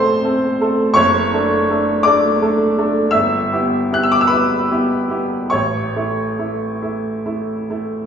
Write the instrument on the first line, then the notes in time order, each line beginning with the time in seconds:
upright piano
Already playing: A#1 A3 C4 A4 C5 C6
0.24 A3 C4 A4
0.61 A3 C4 A4
0.94 F#1 C#5 C#6
1.34 A3 D4 A4
1.70 A3 D4 A4
2.03 A3 D4 D5 D6
2.07 A4
2.42 A3 D4 A4
2.78 A3 D4 A4
3.11 G1 E5 E6
3.52 B3 E4 G4
3.92 B3 E4 G4 F#6
4.03 E6
4.12 D6
4.21 E6
4.27 B3 B4 B5
4.31 E4 G4
4.71 B3 E4 G4
5.10 B3 E4 G4
5.50 A1 C#5 C#6
5.96 A3 E4
6.38 A3 E4
6.82 A3 E4
7.26 A3 E4
7.70 A3 E4